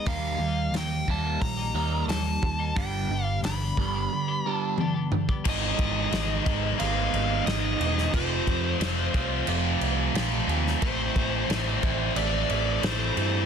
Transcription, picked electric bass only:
0.06 0.34 D#2 medium
0.39 0.67 D#2 medium
0.71 1.00 D#2 medium
1.08 1.35 D#2 medium
1.42 1.69 A#1 medium
1.73 2.01 D#2 medium
2.07 2.35 D#2 medium
2.43 2.70 D#2 medium
2.76 3.04 G1 medium
3.09 3.37 G1 medium
3.42 3.70 G1 medium
3.77 4.05 G1 medium
5.45 5.71 G#1 loud
5.79 6.04 G#1 medium
6.12 6.38 G#1 medium
6.46 6.71 G#1 medium
6.81 7.06 G#1 medium
7.14 7.39 G#1 medium
7.47 7.72 G#1 medium
7.80 8.06 E1 medium
8.13 8.39 F1 loud
8.47 8.72 F2 medium
8.81 9.06 F1 medium
9.14 9.40 C2 medium
9.48 9.73 F1 medium
9.81 10.07 C2 medium
10.14 10.40 A#1 medium
10.47 10.73 D#2 medium
10.82 11.08 A1 loud
11.16 11.41 A1 medium
11.50 11.75 A1 loud
11.83 12.08 A1 medium
12.16 12.42 A1 medium
12.50 12.76 A1 medium
12.83 13.09 A1 medium
13.17 13.43 G2 medium

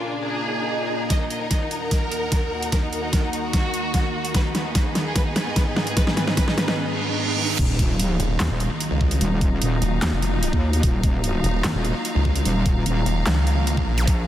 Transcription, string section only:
0.00 1.10 D4 medium
0.00 0.13 G#4 medium
0.00 4.85 A#4 medium
0.00 1.10 F5 medium
0.00 0.13 G#5 medium
0.21 5.64 A#5 medium
1.10 5.17 D#4 medium
1.29 5.34 F#5 medium
4.35 6.78 B3 medium
4.45 6.78 G#4 medium
4.64 6.78 D#5 medium
4.99 6.78 G#5 medium
7.59 14.27 D#4 medium
7.73 14.07 F#3 medium
7.73 14.27 F5 medium
8.44 14.27 A#5 medium
14.07 14.27 C#4 medium
14.13 14.27 A#4 medium

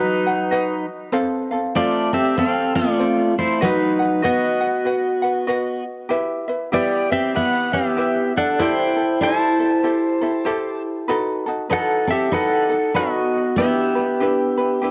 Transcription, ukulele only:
0.00 0.26 F#4 medium
0.00 0.26 B4 medium
0.00 0.26 D#5 medium
0.00 0.25 F#5 medium
0.26 0.50 F#4 soft
0.26 0.50 B4 soft
0.26 0.50 F#5 soft
0.51 1.12 F#4 medium
0.51 1.12 B4 medium
0.51 1.13 D#5 medium
0.51 1.13 F#5 medium
1.12 1.50 C4 medium
1.12 1.51 A4 loud
1.12 1.50 C5 medium
1.12 1.50 F5 loud
1.51 1.74 C4 soft
1.51 1.75 A4 medium
1.51 1.75 F5 medium
1.75 2.13 C4 medium
1.75 2.12 A4 medium
1.75 2.13 C5 medium
1.75 2.14 F5 medium
2.13 2.36 C4 soft
2.13 2.37 A4 medium
2.36 2.75 C4 medium
2.36 2.74 A4 medium
2.36 2.75 C5 medium
2.36 2.73 F5 medium
2.74 2.99 C4 soft
2.74 2.99 A4 medium
2.74 2.99 F5 soft
2.99 3.61 C4 medium
2.99 3.62 A4 medium
2.99 3.61 C5 medium
3.61 4.00 F#4 medium
3.61 3.99 B4 medium
3.61 3.99 D#5 medium
3.61 3.98 F#5 medium
3.99 4.22 F#4 soft
3.99 4.22 B4 soft
3.99 4.23 F#5 medium
4.22 4.61 F#4 medium
4.22 4.61 B4 medium
4.22 4.61 D#5 medium
4.22 4.59 F#5 medium
4.61 4.84 F#4 soft
4.61 4.85 B4 soft
4.61 4.85 F#5 soft
4.84 5.23 F#4 medium
4.84 5.22 B4 medium
4.84 5.23 D#5 medium
4.84 5.21 F#5 medium
5.22 5.46 F#4 soft
5.22 5.47 B4 soft
5.22 5.47 F#5 medium
5.47 6.10 F#4 medium
5.47 6.09 B4 medium
5.47 6.08 D#5 medium
5.47 6.10 F#5 medium
6.09 6.48 E4 medium
6.09 6.47 G4 medium
6.09 6.48 B4 medium
6.09 6.46 E5 loud
6.48 6.71 E4 soft
6.48 6.72 B4 medium
6.48 6.71 E5 medium
6.72 7.11 E4 medium
6.72 7.10 G4 medium
6.72 7.10 B4 medium
6.72 7.09 E5 medium
7.10 7.34 E4 soft
7.10 7.35 B4 soft
7.10 7.34 E5 soft
7.35 7.72 E4 medium
7.35 7.71 G4 medium
7.35 7.72 B4 medium
7.35 7.71 E5 medium
7.72 7.96 E4 soft
7.72 7.97 B4 soft
7.72 7.96 E5 soft
7.97 8.60 E4 medium
7.97 8.59 G4 medium
7.97 8.59 B4 medium
7.97 8.60 E5 medium
8.59 8.97 E4 medium
8.59 8.97 G4 medium
8.59 8.95 A4 medium
8.59 8.98 C5 medium
8.97 9.21 E4 soft
8.97 9.21 G4 soft
8.97 9.21 A4 medium
9.21 9.59 E4 medium
9.21 9.60 G4 medium
9.21 9.58 A4 medium
9.21 9.60 C5 medium
9.59 9.83 E4 soft
9.59 9.83 G4 soft
9.59 9.83 A4 medium
9.83 10.22 E4 medium
9.83 10.22 G4 medium
9.83 10.20 A4 medium
9.83 10.22 C5 medium
10.22 10.45 E4 medium
10.22 10.45 G4 soft
10.22 10.45 A4 medium
10.45 11.09 E4 medium
10.45 11.08 G4 medium
10.45 11.09 A4 loud
10.45 11.08 C5 medium
11.08 11.47 D#4 medium
11.08 11.46 F#4 loud
11.08 11.45 A4 loud
11.08 11.47 B4 medium
11.46 11.69 D#4 soft
11.46 11.69 F#4 soft
11.46 11.69 A4 medium
11.70 12.09 D#4 medium
11.70 12.09 F#4 medium
11.70 12.07 A4 medium
11.70 12.08 B4 medium
12.08 12.33 A4 medium
12.32 12.70 D#4 medium
12.32 12.69 F#4 medium
12.32 12.68 A4 medium
12.32 12.71 B4 medium
12.70 12.95 D#4 soft
12.70 12.95 F#4 soft
12.70 12.95 A4 soft
12.95 13.58 D#4 medium
12.95 13.58 F#4 medium
12.95 13.58 A4 medium
12.95 13.57 B4 medium
13.58 13.96 D4 medium
13.58 13.95 E4 medium
13.58 13.96 G4 medium
13.58 13.94 B4 medium
13.95 14.20 D4 soft
13.95 14.20 E4 medium
13.95 14.20 B4 medium
14.20 14.58 D4 medium
14.20 14.57 E4 medium
14.20 14.59 G4 medium
14.20 14.56 B4 medium
14.57 14.81 D4 soft
14.57 14.82 E4 medium
14.57 14.82 B4 medium
14.82 14.91 D4 medium
14.82 14.91 E4 medium
14.82 14.91 G4 medium
14.82 14.91 B4 medium

